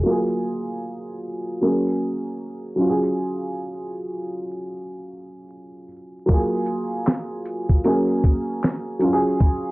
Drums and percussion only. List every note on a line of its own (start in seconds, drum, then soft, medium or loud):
6.29 kick loud
6.29 closed hi-hat medium
6.66 closed hi-hat medium
7.07 snare loud
7.07 clap medium
7.07 closed hi-hat medium
7.45 closed hi-hat medium
7.69 kick medium
7.84 closed hi-hat medium
8.24 kick medium
8.24 closed hi-hat medium
8.63 snare medium
8.63 clap medium
8.63 closed hi-hat medium
9.01 closed hi-hat medium
9.40 kick loud
9.40 closed hi-hat medium